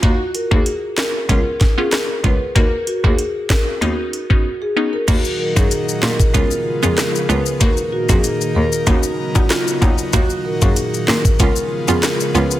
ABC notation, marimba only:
X:1
M:4/4
L:1/16
Q:1/4=95
K:Ebm
V:1 name="Marimba"
G z B A2 z B2 B z2 A B z c z | B z G A2 z B2 ^F z2 F z A z B | G z B A2 z B2 B z2 A B z c z | B z G A2 z B2 ^F z2 F =F3 z |
G z B A2 z B2 B z2 A B z c z |]